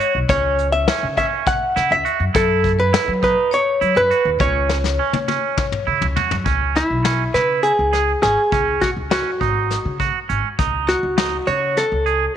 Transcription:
0.00 0.18 F#4 medium
0.00 0.13 C#5 medium
0.00 closed hi-hat medium
0.15 0.26 B1 medium
0.29 0.86 C#2 loud
0.29 0.66 C#4 medium
0.29 0.70 C#5 loud
0.29 0.71 C#5 medium
0.29 kick loud
0.29 closed hi-hat medium
0.58 closed hi-hat medium
0.72 1.16 E5 loud
0.72 1.14 E5 medium
0.88 1.07 C#4 medium
0.88 snare loud
0.88 closed hi-hat medium
1.03 1.26 C#3 medium
1.17 1.55 C#4 medium
1.17 1.30 E5 medium
1.17 1.25 E5 medium
1.17 kick medium
1.17 closed hi-hat medium
1.47 1.88 F#5 medium
1.47 1.91 F#5 loud
1.47 kick loud
1.47 closed hi-hat medium
1.76 1.88 C#3 medium
1.76 1.94 E4 medium
1.76 snare soft
1.76 closed hi-hat medium
1.90 2.02 C#2 medium
1.90 2.18 E5 medium
2.05 2.24 F#4 medium
2.05 closed hi-hat medium
2.20 2.31 F#2 medium
2.34 2.92 F#2 medium
2.34 2.72 E4 medium
2.34 2.76 A4 medium
2.34 2.80 A4 loud
2.34 kick loud
2.34 closed hi-hat medium
2.64 kick medium
2.64 closed hi-hat medium
2.79 3.19 B4 medium
2.79 3.23 B4 medium
2.93 3.12 E4 medium
2.93 snare loud
2.93 closed hi-hat medium
3.08 3.31 F#3 medium
3.23 3.60 D#4 medium
3.23 3.50 B4 medium
3.23 3.53 B4 medium
3.23 kick medium
3.23 closed hi-hat soft
3.51 3.93 C#5 medium
3.51 3.97 C#5 medium
3.51 closed hi-hat medium
3.81 3.93 F#3 medium
3.81 4.00 E4 medium
3.81 closed hi-hat medium
3.95 4.07 F#2 medium
3.95 4.36 B4 medium
3.95 4.40 B4 loud
4.11 4.29 F#4 medium
4.11 closed hi-hat medium
4.25 4.37 D#2 medium
4.39 4.97 C#2 loud
4.39 4.77 C#4 medium
4.39 5.82 C#5 medium
4.39 5.83 C#5 medium
4.39 kick loud
4.39 closed hi-hat medium
4.69 snare medium
4.84 snare soft
4.99 5.18 C#4 medium
5.13 5.36 C#3 medium
5.13 high tom medium
5.28 5.65 C#4 medium
5.28 high tom medium
5.57 kick loud
5.57 mid tom medium
5.72 mid tom medium
5.87 5.99 C#3 medium
5.87 6.06 E4 medium
6.02 6.13 C#2 medium
6.02 floor tom medium
6.16 6.35 F#4 medium
6.16 floor tom medium
6.31 6.43 F#2 medium
6.31 floor tom medium
6.45 6.80 C#2 medium
6.45 6.83 C#4 medium
6.45 kick medium
6.45 closed hi-hat medium
6.76 7.37 E4 medium
6.76 snare soft
6.76 closed hi-hat medium
6.90 7.24 B1 medium
7.04 7.23 C#4 medium
7.04 snare medium
7.04 closed hi-hat medium
7.34 7.69 C#3 medium
7.34 7.72 E4 medium
7.34 7.63 B4 medium
7.34 snare soft
7.34 closed hi-hat medium
7.63 8.22 G#4 medium
7.63 closed hi-hat medium
7.79 8.13 C#2 medium
7.93 8.12 G#4 medium
7.93 snare soft
7.93 closed hi-hat medium
8.23 8.34 G#1 medium
8.23 8.41 C#4 medium
8.23 8.83 G#4 loud
8.23 snare soft
8.23 closed hi-hat medium
8.52 8.75 C#2 medium
8.52 8.90 C#4 medium
8.52 kick medium
8.52 closed hi-hat medium
8.81 8.89 F#4 medium
8.81 kick medium
8.81 snare soft
8.81 closed hi-hat medium
8.97 9.19 C#2 medium
9.11 9.30 C#4 medium
9.11 9.96 F#4 medium
9.11 snare medium
9.11 closed hi-hat medium
9.41 9.75 G#1 medium
9.41 9.78 D#4 medium
9.41 kick medium
9.41 closed hi-hat medium
9.71 snare soft
9.71 closed hi-hat medium
9.85 10.08 C#3 medium
10.00 10.18 F#4 medium
10.00 kick medium
10.00 closed hi-hat medium
10.29 10.41 G#1 medium
10.29 10.48 C#4 medium
10.29 closed hi-hat medium
10.59 10.93 C#2 medium
10.59 10.96 D#4 medium
10.59 kick loud
10.59 closed hi-hat medium
10.88 11.49 F#4 medium
10.88 snare soft
10.88 closed hi-hat medium
11.03 11.37 C#2 medium
11.18 11.36 D#4 medium
11.18 snare loud
11.18 closed hi-hat medium
11.47 11.82 C#3 medium
11.47 11.85 F#4 medium
11.47 11.78 C#5 medium
11.47 closed hi-hat medium
11.77 12.32 A4 medium
11.77 snare soft
11.77 closed hi-hat medium
11.92 12.26 C#2 medium
12.06 12.25 G#4 medium
12.06 closed hi-hat medium

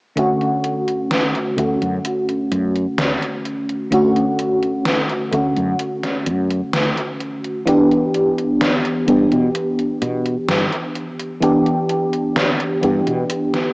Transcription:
0.16 1.52 D3 medium
0.16 1.52 A3 medium
0.16 1.53 C#4 medium
0.16 1.53 F#4 loud
0.16 closed hi-hat medium
0.41 closed hi-hat soft
0.64 closed hi-hat medium
0.88 closed hi-hat soft
1.11 snare loud
1.11 closed hi-hat medium
1.35 closed hi-hat soft
1.56 1.74 D2 medium
1.56 3.86 D3 medium
1.56 3.86 A3 medium
1.56 3.87 C#4 medium
1.56 3.87 F#4 medium
1.56 closed hi-hat medium
1.81 1.98 F#2 medium
1.81 closed hi-hat soft
2.05 closed hi-hat medium
2.29 closed hi-hat soft
2.51 2.85 F#2 medium
2.51 closed hi-hat medium
2.75 closed hi-hat soft
2.98 3.15 D2 medium
2.98 snare loud
2.98 closed hi-hat medium
3.22 closed hi-hat soft
3.45 closed hi-hat soft
3.69 closed hi-hat soft
3.90 5.26 D3 medium
3.90 5.27 A3 medium
3.90 5.27 C#4 medium
3.90 5.28 F#4 loud
3.90 closed hi-hat medium
4.16 closed hi-hat soft
4.39 closed hi-hat medium
4.63 closed hi-hat soft
4.85 snare loud
4.85 closed hi-hat medium
5.09 closed hi-hat soft
5.31 5.50 D2 medium
5.31 7.61 D3 medium
5.31 7.62 A3 medium
5.31 7.62 C#4 medium
5.31 7.62 F#4 medium
5.31 closed hi-hat medium
5.56 5.73 F#2 medium
5.56 closed hi-hat soft
5.79 closed hi-hat medium
6.03 snare soft
6.03 closed hi-hat soft
6.26 6.60 F#2 medium
6.26 closed hi-hat medium
6.50 closed hi-hat soft
6.73 6.90 D2 medium
6.73 snare loud
6.73 closed hi-hat medium
6.97 closed hi-hat soft
7.20 closed hi-hat soft
7.44 closed hi-hat soft
7.66 9.01 E3 medium
7.66 9.02 B3 medium
7.66 9.03 D4 medium
7.66 9.03 G4 loud
7.66 closed hi-hat medium
7.91 closed hi-hat soft
8.14 closed hi-hat medium
8.38 closed hi-hat soft
8.61 snare loud
8.61 closed hi-hat medium
8.85 closed hi-hat soft
9.06 9.25 G2 medium
9.06 11.36 E3 medium
9.06 11.37 B3 medium
9.06 11.37 D4 medium
9.06 11.38 G4 medium
9.06 closed hi-hat medium
9.32 9.48 B2 medium
9.32 closed hi-hat soft
9.55 closed hi-hat medium
9.79 closed hi-hat soft
10.02 10.35 B2 medium
10.02 closed hi-hat medium
10.26 closed hi-hat soft
10.49 10.65 G2 medium
10.49 snare loud
10.49 closed hi-hat medium
10.72 closed hi-hat soft
10.95 closed hi-hat soft
11.20 closed hi-hat soft
11.41 12.77 E3 loud
11.41 12.77 B3 medium
11.41 12.78 D4 medium
11.41 12.78 G4 loud
11.41 closed hi-hat medium
11.66 closed hi-hat soft
11.89 closed hi-hat medium
12.13 closed hi-hat soft
12.36 snare loud
12.36 closed hi-hat medium
12.60 closed hi-hat soft
12.81 13.00 G2 medium
12.81 13.73 E3 medium
12.81 13.73 B3 medium
12.81 13.73 D4 medium
12.81 13.73 G4 medium
12.81 closed hi-hat medium
13.07 13.23 B2 medium
13.07 closed hi-hat soft
13.30 closed hi-hat medium
13.54 snare soft
13.54 closed hi-hat soft

